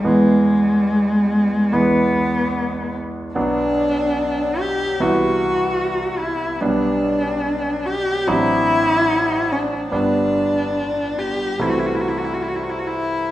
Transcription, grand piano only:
\new Staff \with { instrumentName = "Grand piano" } { \clef bass \time 4/4 \key e \major \tempo 4 = 73 <e, e gis b>2 <e, e gis b>2 | \key g \major <b,, fis b d'>2 <c, e b e'>2 | <b,, g b d'>2 <a,, fis c' d'>2 | <g,, g b d'>2 <c, e a c'>2 | }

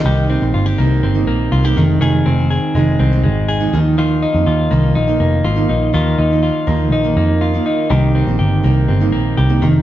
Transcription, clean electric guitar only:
\new Staff \with { instrumentName = "Clean electric guitar" } { \time 4/4 \key c \minor \tempo 4 = 122 <ees g'>8 c'8 f'16 g'16 bes8 c'8 bes8 f'16 g'16 ees8 | <ees aes'>8 c'8 aes'8 aes8 c'8 aes8 aes'8 ees8 | <ees f'>8 ees'8 f'8 bes8 ees'8 bes8 f'8 ees'8 | <ees f'>8 ees'8 f'8 bes8 ees'8 bes8 f'8 ees'8 |
<ees g'>8 c'8 g'8 bes8 c'8 bes8 g'8 ees8 | }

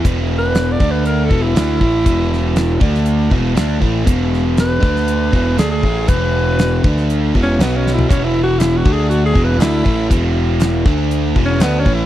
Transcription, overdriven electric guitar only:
\new Staff \with { instrumentName = "Overdriven electric guitar" } { \clef bass \time 4/4 \key d \lydian \tempo 4 = 119 <e, b, e>4. <d a d'>4 <e, b, e>8 <d a d'>8 <a, e a>8 | <e, b, e>4. <d a d'>4 <e, b, e>8 <d a d'>8 <a, e a>8 | <e, b, e>4. <d a d'>4 <e, b, e>8 <d a d'>8 <a, e a>8 | <e, b, e>4. <d a d'>4 <e, b, e>8 <b, fis b>4 |
<e, b, e>4. <d a d'>4 <e, b, e>8 <d a d'>8 <a, e a>8 | <e, b, e>4. <d a d'>4 <e, b, e>8 <d a d'>8 <a, e a>8 | }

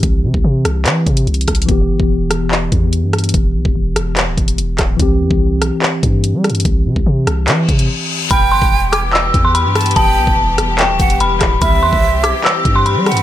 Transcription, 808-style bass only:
\new Staff \with { instrumentName = "808-style bass" } { \clef bass \time 4/4 \key e \minor \tempo 4 = 145 c,8 c16 c,16 c8 c,8 e8 c8 c,8 c,8 | e,,8 g,,16 e,,4.~ e,,16 e,8. g,8. | e,,8 b,,16 e,,16 e,,8 e,,8. d,,16 e,,8 e,,8 d,,8 | c,8 e,16 c,8. b,,16 r8. g,8. g16. g,16. |
c,8 c16 c,16 c8 c,8 e8 c8 r4 | e,,8 g,,16 e,,4.~ e,,16 e,8. g,8. | e,,8 b,,16 e,,16 e,,8 e,,8. d,,16 e,,8 e,,8 d,,8 | c,8 e,16 c,8. b,,16 r8. g,8. g16. g,16. | }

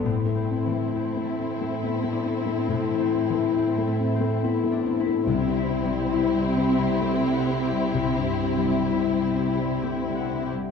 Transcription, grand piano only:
\new Staff \with { instrumentName = "Grand piano" } { \time 3/4 \key a \minor \tempo 4 = 68 a,16 a16 c'16 a16 e'16 a16 c'16 a16 b16 a16 c'16 a16 | a,16 e16 c'16 a16 e'16 a16 c'16 a16 b16 a16 c'16 a16 | c,16 g16 c'16 g16 e'16 g16 c'16 g16 a16 g16 c'16 g16 | c,16 g,16 c'16 g16 e'16 g16 c'16 g16 a16 g16 c'16 g16 | }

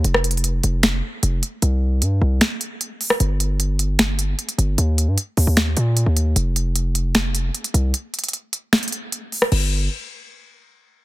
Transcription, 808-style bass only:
\new Staff \with { instrumentName = "808-style bass" } { \clef bass \time 4/4 \key f \mixolydian \tempo 4 = 152 f,,4. f,,4 r8 f,,8 r8 | c,4 g,8 c,8 r2 | g,,2. r8 g,,8 | ees,8. g,16 r8 ees,16 ees,8. bes,8. ees,8. |
f,,2. r8 c,8 | r1 | g,,4 r2. | }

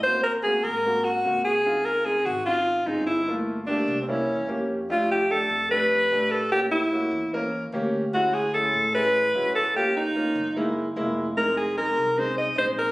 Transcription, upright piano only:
\new Staff \with { instrumentName = "Upright piano" } { \time 4/4 \key f \phrygian \tempo 4 = 148 <bes c' ges'>8 r8 <bes c' ges'>8 r8 <bes c' ges'>8 r8 <bes c' ges'>8 r8 | <c' ees' f'>8 r8 <c' ees' aes'>8 r8 <c' ees' f'>8 r8 <c' ees' aes'>8 r8 | <a bes f'>8 r8 <a bes g'>8 r8 <bes des' e'>8 r8 <bes des' g'>8 r8 | <a d' g'>8 r8 <a d' a'>8 r8 <a d' g'>8 r8 <a d' g'>8 r8 |
<bes cis' g'>8 r8 <bes cis' ges'>8 r8 <bes cis' bes'>8 r8 <bes cis' g'>8 r8 | <gis cis' e' fis'>8 r8 <gis cis' e' gis'>8 r8 <gis cis' e' gis'>8 r8 <gis cis' e' fis'>8 r8 | <bes des' f'>8 r8 <bes des' f'>8 r8 <aes bes fes'>8 r8 <aes bes fes'>8 r8 | <aes c' ees'>8 r8 <aes c' ees'>8 r8 <aes c' ees'>8 r8 <aes c' ees'>8 r8 | }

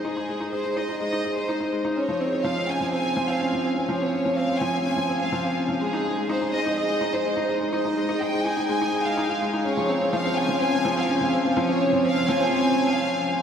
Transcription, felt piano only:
\new Staff \with { instrumentName = "Felt piano" } { \time 4/4 \key des \lydian \tempo 4 = 125 ees'16 ees'16 aes16 ees'16 aes'16 aes16 ees'16 ees'16 aes16 ees'16 aes'16 aes16 ees'16 ees'16 aes16 ees'16 | des'16 f16 c'16 c'16 f16 c'16 des'16 f16 c'16 c'16 f16 c'16 des'16 f16 c'16 c'16 | f16 c'16 des'16 f16 c'16 c'16 f16 c'16 des'16 f16 c'16 c'16 f16 c'16 des'16 f16 | aes16 ees'16 aes'16 aes16 ees'16 ees'16 aes16 ees'16 aes'16 aes16 ees'16 ees'16 aes16 ees'16 aes'16 aes16 |
ees'16 ees'16 aes16 ees'16 aes'16 aes16 ees'16 ees'16 aes16 ees'16 aes'16 aes16 ees'16 ees'16 aes16 ees'16 | des'16 f16 c'16 c'16 f16 c'16 des'16 f16 c'16 c'16 f16 c'16 des'16 f16 c'16 c'16 | f16 c'16 des'16 f16 c'16 c'16 f16 c'16 r2 | }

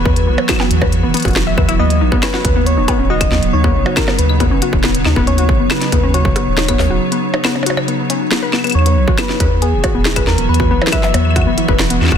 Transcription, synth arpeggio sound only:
\new Staff \with { instrumentName = "Synth arpeggio sound" } { \time 4/4 \key b \major \tempo 4 = 138 b'16 r16 b16 r16 fis'16 b16 r16 b'16 r16 b16 b16 fis'16 r16 e''16 b'16 e'16 | b16 r16 dis'16 b16 cis'16 fis'16 r16 b16 r16 dis'16 b16 cis'16 fis'16 r16 b16 r16 | dis'16 b16 cis'16 fis'16 r16 b16 r16 dis'16 b16 cis'16 fis'16 r16 b16 r16 dis'16 b16 | cis'16 fis'16 r16 b16 r16 dis'16 b16 cis'16 fis'16 r16 b16 r16 dis'16 b16 cis'16 fis'16 |
r16 b16 r16 dis'16 b16 cis'16 fis'16 r16 b16 r16 cis'16 r16 b16 b'16 b16 b16 | r16 b16 r16 fis'16 b16 e'16 b'16 r16 b16 r16 fis'16 b16 e'16 b'16 r16 b16 | r16 fis'16 b16 e'16 b'16 r16 b16 r16 fis'16 b16 e'16 b'16 r16 b16 r16 fis'16 | }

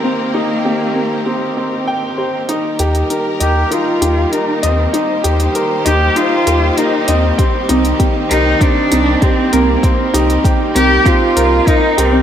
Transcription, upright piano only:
\new Staff \with { instrumentName = "Upright piano" } { \time 4/4 \key ees \major \tempo 4 = 98 c'8 ees'8 g'8 bes'8 c'8 c'8 g''8 c''8 | ees'8 g'8 bes'8 ees''8 ees'8 g'8 bes'8 ees''8 | ees'8 g'8 bes'8 ees''8 ees'8 g'8 bes'8 ees''8 | c'8 ees'8 g'8 bes'8 c'8 ees'8 g'8 bes'8 |
c'8 ees'8 g'8 bes'8 c'8 bes'8 bes'8 g'8 | }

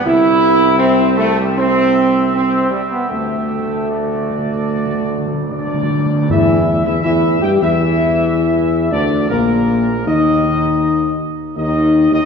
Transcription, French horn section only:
\new Staff \with { instrumentName = "French horn section" } { \time 4/4 \key d \mixolydian \tempo 4 = 79 e'4 c'8 a16 g16 c'4 c'8 g16 b16 | a2. d'4 | e'8. e'16 e'8 g'16 e'4.~ e'16 d'8 | bes4 ees'4. r8 ees'8. ees'16 | }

